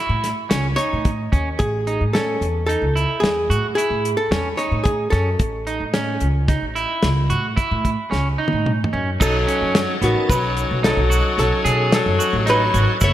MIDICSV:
0, 0, Header, 1, 7, 480
1, 0, Start_track
1, 0, Tempo, 543971
1, 1407, Time_signature, 7, 2, 24, 8
1, 11589, End_track
2, 0, Start_track
2, 0, Title_t, "Hollow-body jazz guitar"
2, 0, Program_c, 0, 26
2, 0, Note_on_c, 0, 64, 67
2, 672, Note_on_c, 0, 73, 91
2, 729, Note_off_c, 0, 64, 0
2, 1401, Note_on_c, 0, 68, 83
2, 1421, Note_off_c, 0, 73, 0
2, 1879, Note_off_c, 0, 68, 0
2, 1883, Note_on_c, 0, 69, 72
2, 2341, Note_off_c, 0, 69, 0
2, 2351, Note_on_c, 0, 69, 72
2, 2820, Note_off_c, 0, 69, 0
2, 2824, Note_on_c, 0, 68, 74
2, 3300, Note_off_c, 0, 68, 0
2, 3311, Note_on_c, 0, 68, 82
2, 3676, Note_off_c, 0, 68, 0
2, 3679, Note_on_c, 0, 69, 80
2, 4017, Note_off_c, 0, 69, 0
2, 4036, Note_on_c, 0, 73, 69
2, 4267, Note_on_c, 0, 68, 67
2, 4288, Note_off_c, 0, 73, 0
2, 4499, Note_off_c, 0, 68, 0
2, 4503, Note_on_c, 0, 69, 75
2, 7600, Note_off_c, 0, 69, 0
2, 8135, Note_on_c, 0, 69, 85
2, 8852, Note_off_c, 0, 69, 0
2, 8855, Note_on_c, 0, 66, 64
2, 9087, Note_on_c, 0, 71, 77
2, 9098, Note_off_c, 0, 66, 0
2, 9576, Note_on_c, 0, 69, 83
2, 9582, Note_off_c, 0, 71, 0
2, 10043, Note_off_c, 0, 69, 0
2, 10054, Note_on_c, 0, 69, 76
2, 10529, Note_off_c, 0, 69, 0
2, 10540, Note_on_c, 0, 69, 77
2, 11028, Note_off_c, 0, 69, 0
2, 11028, Note_on_c, 0, 71, 93
2, 11502, Note_off_c, 0, 71, 0
2, 11506, Note_on_c, 0, 73, 103
2, 11589, Note_off_c, 0, 73, 0
2, 11589, End_track
3, 0, Start_track
3, 0, Title_t, "Tonewheel organ"
3, 0, Program_c, 1, 16
3, 8121, Note_on_c, 1, 61, 63
3, 8126, Note_on_c, 1, 63, 55
3, 8135, Note_on_c, 1, 69, 71
3, 11448, Note_off_c, 1, 61, 0
3, 11451, Note_off_c, 1, 63, 0
3, 11455, Note_off_c, 1, 69, 0
3, 11486, Note_on_c, 1, 57, 63
3, 11492, Note_on_c, 1, 64, 61
3, 11496, Note_on_c, 1, 69, 75
3, 11589, Note_off_c, 1, 57, 0
3, 11589, Note_off_c, 1, 64, 0
3, 11589, Note_off_c, 1, 69, 0
3, 11589, End_track
4, 0, Start_track
4, 0, Title_t, "Clean electric guitar"
4, 0, Program_c, 2, 27
4, 0, Note_on_c, 2, 64, 67
4, 247, Note_off_c, 2, 64, 0
4, 439, Note_on_c, 2, 61, 66
4, 586, Note_off_c, 2, 61, 0
4, 675, Note_on_c, 2, 63, 67
4, 966, Note_off_c, 2, 63, 0
4, 1166, Note_on_c, 2, 61, 67
4, 1310, Note_off_c, 2, 61, 0
4, 1651, Note_on_c, 2, 63, 68
4, 1794, Note_off_c, 2, 63, 0
4, 1892, Note_on_c, 2, 61, 66
4, 2178, Note_off_c, 2, 61, 0
4, 2367, Note_on_c, 2, 63, 52
4, 2510, Note_off_c, 2, 63, 0
4, 2608, Note_on_c, 2, 64, 64
4, 2895, Note_off_c, 2, 64, 0
4, 3088, Note_on_c, 2, 66, 69
4, 3232, Note_off_c, 2, 66, 0
4, 3329, Note_on_c, 2, 64, 62
4, 3616, Note_off_c, 2, 64, 0
4, 3805, Note_on_c, 2, 61, 75
4, 3949, Note_off_c, 2, 61, 0
4, 4041, Note_on_c, 2, 63, 68
4, 4330, Note_off_c, 2, 63, 0
4, 4517, Note_on_c, 2, 61, 59
4, 4664, Note_off_c, 2, 61, 0
4, 5001, Note_on_c, 2, 63, 67
4, 5146, Note_off_c, 2, 63, 0
4, 5239, Note_on_c, 2, 61, 65
4, 5529, Note_off_c, 2, 61, 0
4, 5720, Note_on_c, 2, 63, 58
4, 5866, Note_off_c, 2, 63, 0
4, 5960, Note_on_c, 2, 64, 68
4, 6250, Note_off_c, 2, 64, 0
4, 6440, Note_on_c, 2, 66, 64
4, 6586, Note_off_c, 2, 66, 0
4, 6676, Note_on_c, 2, 64, 70
4, 6967, Note_off_c, 2, 64, 0
4, 7154, Note_on_c, 2, 61, 69
4, 7302, Note_off_c, 2, 61, 0
4, 7397, Note_on_c, 2, 63, 68
4, 7688, Note_off_c, 2, 63, 0
4, 7879, Note_on_c, 2, 61, 55
4, 8025, Note_off_c, 2, 61, 0
4, 8118, Note_on_c, 2, 63, 85
4, 8264, Note_off_c, 2, 63, 0
4, 8359, Note_on_c, 2, 61, 70
4, 8649, Note_off_c, 2, 61, 0
4, 8838, Note_on_c, 2, 59, 56
4, 9128, Note_off_c, 2, 59, 0
4, 9558, Note_on_c, 2, 63, 73
4, 9704, Note_off_c, 2, 63, 0
4, 9794, Note_on_c, 2, 66, 67
4, 10086, Note_off_c, 2, 66, 0
4, 10275, Note_on_c, 2, 68, 76
4, 10566, Note_off_c, 2, 68, 0
4, 10757, Note_on_c, 2, 66, 64
4, 10904, Note_off_c, 2, 66, 0
4, 10995, Note_on_c, 2, 63, 74
4, 11142, Note_off_c, 2, 63, 0
4, 11239, Note_on_c, 2, 66, 62
4, 11385, Note_off_c, 2, 66, 0
4, 11480, Note_on_c, 2, 64, 87
4, 11589, Note_off_c, 2, 64, 0
4, 11589, End_track
5, 0, Start_track
5, 0, Title_t, "Alto saxophone"
5, 0, Program_c, 3, 65
5, 8125, Note_on_c, 3, 54, 80
5, 8811, Note_off_c, 3, 54, 0
5, 8858, Note_on_c, 3, 51, 63
5, 9076, Note_off_c, 3, 51, 0
5, 9098, Note_on_c, 3, 54, 80
5, 9539, Note_off_c, 3, 54, 0
5, 9585, Note_on_c, 3, 54, 68
5, 10023, Note_off_c, 3, 54, 0
5, 10064, Note_on_c, 3, 54, 72
5, 10503, Note_off_c, 3, 54, 0
5, 10545, Note_on_c, 3, 54, 74
5, 10983, Note_off_c, 3, 54, 0
5, 11017, Note_on_c, 3, 54, 85
5, 11459, Note_off_c, 3, 54, 0
5, 11507, Note_on_c, 3, 57, 107
5, 11589, Note_off_c, 3, 57, 0
5, 11589, End_track
6, 0, Start_track
6, 0, Title_t, "Upright bass"
6, 0, Program_c, 4, 32
6, 82, Note_on_c, 4, 45, 86
6, 279, Note_off_c, 4, 45, 0
6, 449, Note_on_c, 4, 37, 77
6, 643, Note_off_c, 4, 37, 0
6, 820, Note_on_c, 4, 45, 75
6, 1106, Note_off_c, 4, 45, 0
6, 1170, Note_on_c, 4, 39, 86
6, 1363, Note_off_c, 4, 39, 0
6, 1411, Note_on_c, 4, 33, 86
6, 1774, Note_on_c, 4, 45, 68
6, 1787, Note_off_c, 4, 33, 0
6, 2062, Note_off_c, 4, 45, 0
6, 2128, Note_on_c, 4, 40, 83
6, 2419, Note_off_c, 4, 40, 0
6, 2484, Note_on_c, 4, 37, 72
6, 2679, Note_off_c, 4, 37, 0
6, 2842, Note_on_c, 4, 40, 79
6, 3085, Note_on_c, 4, 45, 76
6, 3099, Note_off_c, 4, 40, 0
6, 3280, Note_off_c, 4, 45, 0
6, 3445, Note_on_c, 4, 45, 75
6, 3639, Note_off_c, 4, 45, 0
6, 3801, Note_on_c, 4, 40, 73
6, 3997, Note_off_c, 4, 40, 0
6, 4161, Note_on_c, 4, 45, 77
6, 4455, Note_off_c, 4, 45, 0
6, 4522, Note_on_c, 4, 42, 94
6, 4718, Note_off_c, 4, 42, 0
6, 4767, Note_on_c, 4, 33, 72
6, 5121, Note_on_c, 4, 45, 67
6, 5134, Note_off_c, 4, 33, 0
6, 5414, Note_off_c, 4, 45, 0
6, 5479, Note_on_c, 4, 37, 78
6, 5773, Note_off_c, 4, 37, 0
6, 5843, Note_on_c, 4, 33, 56
6, 6039, Note_off_c, 4, 33, 0
6, 6202, Note_on_c, 4, 37, 88
6, 6439, Note_on_c, 4, 45, 76
6, 6452, Note_off_c, 4, 37, 0
6, 6636, Note_off_c, 4, 45, 0
6, 6807, Note_on_c, 4, 45, 82
6, 7001, Note_off_c, 4, 45, 0
6, 7164, Note_on_c, 4, 37, 73
6, 7359, Note_off_c, 4, 37, 0
6, 7523, Note_on_c, 4, 45, 73
6, 7816, Note_off_c, 4, 45, 0
6, 7883, Note_on_c, 4, 42, 93
6, 8079, Note_off_c, 4, 42, 0
6, 8130, Note_on_c, 4, 35, 80
6, 8323, Note_off_c, 4, 35, 0
6, 8483, Note_on_c, 4, 42, 69
6, 8679, Note_off_c, 4, 42, 0
6, 8838, Note_on_c, 4, 33, 94
6, 8939, Note_off_c, 4, 33, 0
6, 9084, Note_on_c, 4, 35, 80
6, 9376, Note_off_c, 4, 35, 0
6, 9450, Note_on_c, 4, 35, 76
6, 9643, Note_off_c, 4, 35, 0
6, 9680, Note_on_c, 4, 35, 80
6, 9877, Note_off_c, 4, 35, 0
6, 10039, Note_on_c, 4, 35, 79
6, 10139, Note_off_c, 4, 35, 0
6, 10279, Note_on_c, 4, 47, 72
6, 10573, Note_off_c, 4, 47, 0
6, 10642, Note_on_c, 4, 42, 78
6, 10741, Note_off_c, 4, 42, 0
6, 10881, Note_on_c, 4, 33, 83
6, 11174, Note_off_c, 4, 33, 0
6, 11242, Note_on_c, 4, 32, 84
6, 11341, Note_off_c, 4, 32, 0
6, 11482, Note_on_c, 4, 30, 97
6, 11589, Note_off_c, 4, 30, 0
6, 11589, End_track
7, 0, Start_track
7, 0, Title_t, "Drums"
7, 209, Note_on_c, 9, 38, 35
7, 209, Note_on_c, 9, 42, 65
7, 298, Note_off_c, 9, 38, 0
7, 298, Note_off_c, 9, 42, 0
7, 448, Note_on_c, 9, 38, 114
7, 448, Note_on_c, 9, 42, 89
7, 536, Note_off_c, 9, 38, 0
7, 536, Note_off_c, 9, 42, 0
7, 688, Note_on_c, 9, 42, 56
7, 777, Note_off_c, 9, 42, 0
7, 926, Note_on_c, 9, 42, 70
7, 928, Note_on_c, 9, 36, 96
7, 1014, Note_off_c, 9, 42, 0
7, 1017, Note_off_c, 9, 36, 0
7, 1171, Note_on_c, 9, 36, 72
7, 1175, Note_on_c, 9, 42, 51
7, 1259, Note_off_c, 9, 36, 0
7, 1263, Note_off_c, 9, 42, 0
7, 1410, Note_on_c, 9, 42, 71
7, 1411, Note_on_c, 9, 36, 109
7, 1499, Note_off_c, 9, 36, 0
7, 1499, Note_off_c, 9, 42, 0
7, 1652, Note_on_c, 9, 42, 52
7, 1740, Note_off_c, 9, 42, 0
7, 1896, Note_on_c, 9, 38, 96
7, 1896, Note_on_c, 9, 42, 66
7, 1984, Note_off_c, 9, 38, 0
7, 1984, Note_off_c, 9, 42, 0
7, 2136, Note_on_c, 9, 42, 49
7, 2224, Note_off_c, 9, 42, 0
7, 2376, Note_on_c, 9, 42, 64
7, 2464, Note_off_c, 9, 42, 0
7, 2619, Note_on_c, 9, 42, 48
7, 2707, Note_off_c, 9, 42, 0
7, 2856, Note_on_c, 9, 38, 95
7, 2856, Note_on_c, 9, 42, 65
7, 2944, Note_off_c, 9, 38, 0
7, 2944, Note_off_c, 9, 42, 0
7, 3098, Note_on_c, 9, 42, 60
7, 3186, Note_off_c, 9, 42, 0
7, 3337, Note_on_c, 9, 42, 72
7, 3425, Note_off_c, 9, 42, 0
7, 3576, Note_on_c, 9, 42, 62
7, 3664, Note_off_c, 9, 42, 0
7, 3811, Note_on_c, 9, 38, 111
7, 3811, Note_on_c, 9, 42, 80
7, 3899, Note_off_c, 9, 38, 0
7, 3899, Note_off_c, 9, 42, 0
7, 4047, Note_on_c, 9, 42, 52
7, 4135, Note_off_c, 9, 42, 0
7, 4281, Note_on_c, 9, 42, 71
7, 4284, Note_on_c, 9, 36, 94
7, 4369, Note_off_c, 9, 42, 0
7, 4372, Note_off_c, 9, 36, 0
7, 4523, Note_on_c, 9, 36, 61
7, 4523, Note_on_c, 9, 38, 30
7, 4523, Note_on_c, 9, 42, 47
7, 4611, Note_off_c, 9, 38, 0
7, 4611, Note_off_c, 9, 42, 0
7, 4612, Note_off_c, 9, 36, 0
7, 4760, Note_on_c, 9, 42, 82
7, 4762, Note_on_c, 9, 36, 94
7, 4848, Note_off_c, 9, 42, 0
7, 4851, Note_off_c, 9, 36, 0
7, 5003, Note_on_c, 9, 42, 53
7, 5091, Note_off_c, 9, 42, 0
7, 5238, Note_on_c, 9, 38, 84
7, 5238, Note_on_c, 9, 42, 76
7, 5327, Note_off_c, 9, 38, 0
7, 5327, Note_off_c, 9, 42, 0
7, 5475, Note_on_c, 9, 42, 56
7, 5563, Note_off_c, 9, 42, 0
7, 5720, Note_on_c, 9, 38, 29
7, 5720, Note_on_c, 9, 42, 74
7, 5721, Note_on_c, 9, 36, 94
7, 5809, Note_off_c, 9, 38, 0
7, 5809, Note_off_c, 9, 42, 0
7, 5810, Note_off_c, 9, 36, 0
7, 5966, Note_on_c, 9, 42, 44
7, 6054, Note_off_c, 9, 42, 0
7, 6199, Note_on_c, 9, 38, 95
7, 6199, Note_on_c, 9, 42, 71
7, 6288, Note_off_c, 9, 38, 0
7, 6288, Note_off_c, 9, 42, 0
7, 6442, Note_on_c, 9, 42, 53
7, 6531, Note_off_c, 9, 42, 0
7, 6684, Note_on_c, 9, 36, 85
7, 6685, Note_on_c, 9, 42, 73
7, 6772, Note_off_c, 9, 36, 0
7, 6773, Note_off_c, 9, 42, 0
7, 6925, Note_on_c, 9, 36, 59
7, 6927, Note_on_c, 9, 42, 53
7, 7013, Note_off_c, 9, 36, 0
7, 7015, Note_off_c, 9, 42, 0
7, 7167, Note_on_c, 9, 38, 54
7, 7255, Note_off_c, 9, 38, 0
7, 7481, Note_on_c, 9, 48, 64
7, 7570, Note_off_c, 9, 48, 0
7, 7644, Note_on_c, 9, 47, 60
7, 7733, Note_off_c, 9, 47, 0
7, 7802, Note_on_c, 9, 45, 72
7, 7890, Note_off_c, 9, 45, 0
7, 8126, Note_on_c, 9, 36, 108
7, 8126, Note_on_c, 9, 49, 88
7, 8133, Note_on_c, 9, 82, 49
7, 8214, Note_off_c, 9, 36, 0
7, 8215, Note_off_c, 9, 49, 0
7, 8221, Note_off_c, 9, 82, 0
7, 8368, Note_on_c, 9, 42, 59
7, 8457, Note_off_c, 9, 42, 0
7, 8603, Note_on_c, 9, 38, 109
7, 8603, Note_on_c, 9, 42, 85
7, 8613, Note_on_c, 9, 82, 17
7, 8691, Note_off_c, 9, 38, 0
7, 8691, Note_off_c, 9, 42, 0
7, 8701, Note_off_c, 9, 82, 0
7, 8845, Note_on_c, 9, 42, 59
7, 8933, Note_off_c, 9, 42, 0
7, 9084, Note_on_c, 9, 36, 94
7, 9086, Note_on_c, 9, 38, 33
7, 9086, Note_on_c, 9, 42, 65
7, 9097, Note_on_c, 9, 82, 53
7, 9173, Note_off_c, 9, 36, 0
7, 9174, Note_off_c, 9, 38, 0
7, 9174, Note_off_c, 9, 42, 0
7, 9186, Note_off_c, 9, 82, 0
7, 9325, Note_on_c, 9, 42, 44
7, 9333, Note_on_c, 9, 82, 17
7, 9413, Note_off_c, 9, 42, 0
7, 9421, Note_off_c, 9, 82, 0
7, 9568, Note_on_c, 9, 38, 101
7, 9568, Note_on_c, 9, 42, 73
7, 9657, Note_off_c, 9, 38, 0
7, 9657, Note_off_c, 9, 42, 0
7, 9811, Note_on_c, 9, 42, 49
7, 9811, Note_on_c, 9, 82, 40
7, 9899, Note_off_c, 9, 42, 0
7, 9899, Note_off_c, 9, 82, 0
7, 10047, Note_on_c, 9, 38, 30
7, 10047, Note_on_c, 9, 42, 66
7, 10135, Note_off_c, 9, 38, 0
7, 10135, Note_off_c, 9, 42, 0
7, 10286, Note_on_c, 9, 42, 61
7, 10286, Note_on_c, 9, 82, 17
7, 10374, Note_off_c, 9, 42, 0
7, 10374, Note_off_c, 9, 82, 0
7, 10522, Note_on_c, 9, 38, 111
7, 10522, Note_on_c, 9, 42, 81
7, 10610, Note_off_c, 9, 38, 0
7, 10610, Note_off_c, 9, 42, 0
7, 10765, Note_on_c, 9, 42, 61
7, 10770, Note_on_c, 9, 82, 39
7, 10853, Note_off_c, 9, 42, 0
7, 10859, Note_off_c, 9, 82, 0
7, 11002, Note_on_c, 9, 38, 29
7, 11002, Note_on_c, 9, 42, 72
7, 11091, Note_off_c, 9, 38, 0
7, 11091, Note_off_c, 9, 42, 0
7, 11243, Note_on_c, 9, 42, 54
7, 11254, Note_on_c, 9, 82, 17
7, 11331, Note_off_c, 9, 42, 0
7, 11342, Note_off_c, 9, 82, 0
7, 11479, Note_on_c, 9, 82, 52
7, 11484, Note_on_c, 9, 42, 88
7, 11486, Note_on_c, 9, 36, 107
7, 11567, Note_off_c, 9, 82, 0
7, 11572, Note_off_c, 9, 42, 0
7, 11574, Note_off_c, 9, 36, 0
7, 11589, End_track
0, 0, End_of_file